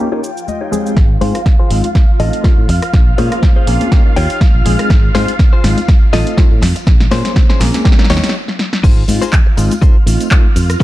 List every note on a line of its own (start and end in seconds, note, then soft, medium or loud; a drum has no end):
0.00 0.96 F4 medium
0.00 0.98 G5 medium
0.11 0.20 A#3 medium
0.11 0.20 C#4 medium
0.11 0.20 D#4 medium
0.11 0.30 D#4 medium
0.11 0.30 G4 loud
0.11 0.20 A#4 medium
0.11 0.30 C#5 loud
0.11 tambourine soft
0.23 0.46 G5 medium
0.23 tambourine medium
0.23 shaker medium
0.36 tambourine soft
0.36 shaker soft
0.47 0.93 D#5 medium
0.47 muted clean electric guitar stroke soft
0.47 tambourine soft
0.47 high conga medium
0.47 shaker soft
0.61 0.91 D#4 medium
0.61 0.91 G4 medium
0.61 0.91 C#5 medium
0.61 tambourine soft
0.71 1.18 G#3 medium
0.71 1.19 C4 medium
0.71 1.19 D#4 medium
0.71 1.19 G#4 medium
0.71 tambourine medium
0.71 low conga medium
0.71 shaker medium
0.86 tambourine soft
0.86 shaker soft
0.97 1.15 G#1 medium
0.97 8.35 F4 medium
0.97 8.35 F5 medium
0.97 kick loud
0.97 snare soft
0.97 closed hi-hat medium
1.21 1.31 G#2 medium
1.21 1.36 G#3 medium
1.21 1.37 C4 medium
1.21 1.37 D#4 medium
1.21 1.37 F4 medium
1.21 1.40 F4 medium
1.21 1.40 G#4 medium
1.21 1.41 C5 loud
1.21 open hi-hat loud
1.21 tambourine medium
1.21 high conga loud
1.35 cross-stick medium
1.35 closed hi-hat medium
1.35 tambourine medium
1.45 kick loud
1.45 snare soft
1.45 closed hi-hat medium
1.45 tambourine soft
1.45 low conga medium
1.59 1.71 F4 medium
1.59 1.71 G#4 medium
1.59 1.71 C5 loud
1.70 1.80 G#1 medium
1.70 1.86 G#3 medium
1.70 1.86 C4 medium
1.70 1.86 D#4 medium
1.70 1.86 F4 loud
1.70 open hi-hat loud
1.84 muted clean electric guitar stroke soft
1.84 closed hi-hat medium
1.84 tambourine soft
1.84 high conga medium
1.95 kick loud
1.95 snare medium
1.95 closed hi-hat medium
2.19 2.30 A1 medium
2.19 2.41 A3 medium
2.19 2.42 C4 medium
2.19 2.42 D#4 medium
2.19 2.42 F4 medium
2.19 2.44 F4 medium
2.19 2.44 A4 medium
2.19 2.44 D#5 loud
2.19 open hi-hat loud
2.33 closed hi-hat medium
2.33 tambourine medium
2.44 2.59 A3 medium
2.44 2.60 C4 medium
2.44 2.60 D#4 medium
2.44 2.60 F4 medium
2.44 kick loud
2.44 snare medium
2.44 closed hi-hat medium
2.44 tambourine soft
2.44 high conga loud
2.58 2.66 A2 medium
2.68 2.79 F2 medium
2.68 muted clean electric guitar stroke medium
2.68 open hi-hat loud
2.68 tambourine medium
2.68 low conga loud
2.82 muted clean electric guitar stroke soft
2.82 cross-stick medium
2.82 closed hi-hat medium
2.82 tambourine medium
2.94 3.12 A#1 medium
2.94 kick loud
2.94 snare medium
2.94 closed hi-hat medium
3.18 3.28 A#2 medium
3.18 3.64 A#3 medium
3.18 3.65 C#4 medium
3.18 3.37 C#4 medium
3.18 3.37 G#4 medium
3.18 3.37 C5 loud
3.18 3.65 C5 medium
3.18 open hi-hat loud
3.18 tambourine medium
3.18 high conga medium
3.32 cross-stick medium
3.32 closed hi-hat medium
3.32 tambourine medium
3.43 kick loud
3.43 snare medium
3.43 closed hi-hat medium
3.43 tambourine soft
3.43 low conga medium
3.56 3.67 C#4 medium
3.56 3.68 G#4 medium
3.56 3.68 C5 loud
3.67 3.77 A#1 medium
3.67 3.89 A#3 medium
3.67 3.89 C4 medium
3.67 3.89 C#4 medium
3.67 3.90 G#4 medium
3.67 open hi-hat loud
3.67 tambourine medium
3.81 muted clean electric guitar stroke soft
3.81 closed hi-hat medium
3.81 tambourine soft
3.81 high conga medium
3.92 4.02 A#3 medium
3.92 4.02 C#4 medium
3.92 4.02 D#4 medium
3.92 4.02 G4 loud
3.92 kick loud
3.92 snare medium
3.92 closed hi-hat medium
4.05 4.13 A#3 medium
4.05 4.13 C#4 medium
4.05 4.13 D#4 medium
4.05 4.14 A#4 medium
4.05 muted fingered electric bass stroke soft
4.16 4.26 D#2 medium
4.16 4.41 D#4 loud
4.16 4.41 G4 medium
4.16 4.41 C#5 loud
4.16 4.40 G5 medium
4.16 open hi-hat loud
4.16 tambourine medium
4.30 closed hi-hat medium
4.30 tambourine soft
4.41 4.87 F5 medium
4.41 kick loud
4.41 snare medium
4.41 closed hi-hat medium
4.41 tambourine soft
4.41 high conga medium
4.55 4.63 A#1 medium
4.65 4.75 A#1 medium
4.65 5.12 G#3 medium
4.65 5.12 C4 medium
4.65 5.12 D#4 medium
4.65 5.12 G#4 loud
4.65 muted clean electric guitar stroke medium
4.65 open hi-hat loud
4.65 tambourine medium
4.65 low conga medium
4.79 muted clean electric guitar stroke soft
4.79 cross-stick medium
4.79 closed hi-hat medium
4.79 tambourine medium
4.90 5.09 G#1 loud
4.90 kick loud
4.90 snare medium
4.90 closed hi-hat medium
4.90 tambourine soft
5.14 5.25 G#2 medium
5.14 5.30 G#3 medium
5.14 5.30 C4 medium
5.14 5.30 D#4 medium
5.14 5.30 F4 medium
5.14 5.34 F4 loud
5.14 5.34 G#4 medium
5.14 5.34 C5 loud
5.14 snare medium
5.14 open hi-hat loud
5.14 tambourine medium
5.14 high conga loud
5.28 closed hi-hat medium
5.28 tambourine soft
5.39 kick loud
5.39 snare medium
5.39 closed hi-hat medium
5.39 tambourine soft
5.39 low conga medium
5.53 5.64 F4 medium
5.53 5.64 G#4 medium
5.53 5.64 C5 loud
5.63 5.74 G#1 medium
5.63 5.79 G#3 loud
5.63 5.79 C4 medium
5.63 5.79 D#4 medium
5.63 5.79 F4 loud
5.63 snare medium
5.63 open hi-hat loud
5.63 tambourine medium
5.77 muted clean electric guitar stroke soft
5.77 closed hi-hat medium
5.77 tambourine medium
5.77 high conga medium
5.88 kick loud
5.88 snare medium
5.88 closed hi-hat medium
6.13 6.23 A1 medium
6.13 6.35 A3 medium
6.13 6.35 C4 medium
6.13 6.35 D#4 medium
6.13 6.35 F4 medium
6.13 6.38 F4 loud
6.13 6.38 A4 loud
6.13 6.38 D#5 loud
6.13 snare medium
6.13 open hi-hat loud
6.13 tambourine medium
6.26 closed hi-hat medium
6.26 tambourine soft
6.37 6.53 A3 medium
6.37 6.53 C4 medium
6.37 6.53 D#4 medium
6.37 6.53 F4 medium
6.37 kick loud
6.37 snare medium
6.37 closed hi-hat medium
6.37 tambourine soft
6.37 high conga loud
6.51 6.59 A2 medium
6.61 6.72 F2 medium
6.61 muted clean electric guitar stroke medium
6.61 snare medium
6.61 open hi-hat loud
6.61 tambourine medium
6.61 low conga loud
6.76 muted clean electric guitar stroke soft
6.76 closed hi-hat medium
6.76 tambourine medium
6.87 7.05 A#1 loud
6.87 kick loud
6.87 snare medium
6.87 closed hi-hat medium
7.01 snare medium
7.11 7.21 A#2 medium
7.11 7.58 A#3 medium
7.11 7.58 C#4 medium
7.11 7.31 C#4 loud
7.11 7.31 G#4 loud
7.11 7.58 C5 loud
7.11 7.31 C5 loud
7.11 snare medium
7.11 open hi-hat loud
7.11 tambourine medium
7.11 high conga medium
7.25 snare medium
7.25 closed hi-hat medium
7.25 tambourine soft
7.35 kick loud
7.35 snare medium
7.35 closed hi-hat soft
7.35 tambourine soft
7.35 low conga medium
7.49 7.61 C#4 medium
7.49 7.61 G#4 medium
7.49 7.61 C5 loud
7.49 snare medium
7.60 7.70 A#1 medium
7.60 7.82 A#3 medium
7.60 7.82 C4 medium
7.60 7.83 C#4 medium
7.60 7.83 G#4 loud
7.60 snare loud
7.60 open hi-hat loud
7.60 tambourine loud
7.74 muted clean electric guitar stroke soft
7.74 snare medium
7.74 closed hi-hat medium
7.74 tambourine soft
7.74 high conga medium
7.85 7.95 A#3 medium
7.85 7.95 C#4 medium
7.85 7.96 D#4 medium
7.85 7.96 G4 loud
7.85 kick loud
7.85 snare loud
7.85 closed hi-hat medium
7.92 snare medium
7.98 8.07 A#3 medium
7.98 8.07 C#4 medium
7.98 8.07 D#4 medium
7.98 8.07 A#4 medium
7.98 muted fingered electric bass stroke soft
7.98 snare medium
8.04 snare medium
8.10 8.20 D#2 medium
8.10 8.35 D#4 loud
8.10 8.35 G4 medium
8.10 8.35 C#5 loud
8.10 snare loud
8.10 open hi-hat loud
8.10 tambourine medium
8.17 snare medium
8.23 snare medium
8.23 closed hi-hat medium
8.23 tambourine soft
8.29 snare medium
8.48 snare medium
8.59 snare medium
8.73 snare medium
8.83 9.02 G#1 loud
8.83 9.03 D#4 loud
8.83 9.03 F4 loud
8.83 10.84 F4 medium
8.83 9.03 G#4 loud
8.83 9.03 C5 loud
8.83 10.84 F5 medium
8.83 kick loud
8.83 closed hi-hat medium
8.83 crash loud
8.83 tambourine soft
8.83 shaker soft
9.08 9.18 G#2 medium
9.08 9.23 G#3 medium
9.08 9.24 C4 medium
9.08 9.24 D#4 medium
9.08 9.24 F4 medium
9.08 open hi-hat loud
9.08 tambourine loud
9.08 high conga loud
9.08 shaker medium
9.21 9.33 D#4 medium
9.21 9.33 F4 medium
9.21 9.33 G#4 medium
9.21 9.33 C5 loud
9.21 cross-stick medium
9.21 closed hi-hat medium
9.21 tambourine medium
9.21 shaker soft
9.32 kick loud
9.32 clap loud
9.32 closed hi-hat medium
9.32 tambourine soft
9.32 low conga medium
9.32 shaker soft
9.46 muted clean electric guitar stroke medium
9.57 9.67 G#1 medium
9.57 9.73 G#3 medium
9.57 9.73 C4 medium
9.57 9.73 D#4 medium
9.57 9.73 F4 loud
9.57 muted clean electric guitar stroke soft
9.57 open hi-hat loud
9.57 tambourine medium
9.57 shaker medium
9.71 closed hi-hat medium
9.71 tambourine medium
9.71 high conga medium
9.71 shaker soft
9.82 9.96 D#4 medium
9.82 9.96 F4 medium
9.82 9.96 A4 medium
9.82 9.96 C5 medium
9.82 kick loud
9.82 closed hi-hat medium
9.82 tambourine soft
9.82 shaker soft
10.06 10.16 A1 medium
10.06 10.28 A3 medium
10.06 10.28 C4 medium
10.06 10.29 D#4 medium
10.06 10.29 F4 medium
10.06 muted clean electric guitar stroke soft
10.06 open hi-hat loud
10.06 tambourine loud
10.06 shaker medium
10.21 closed hi-hat medium
10.21 tambourine medium
10.21 shaker soft
10.31 10.46 A3 medium
10.31 10.47 C4 medium
10.31 10.47 D#4 medium
10.31 10.47 F4 medium
10.31 kick loud
10.31 clap loud
10.31 closed hi-hat medium
10.31 tambourine soft
10.31 high conga medium
10.31 shaker soft
10.56 10.74 F2 medium
10.56 muted clean electric guitar stroke soft
10.56 open hi-hat loud
10.56 tambourine loud
10.56 low conga loud
10.56 shaker medium
10.70 cross-stick medium
10.70 closed hi-hat medium
10.70 tambourine medium
10.70 shaker soft
10.80 10.84 C#4 loud
10.80 kick loud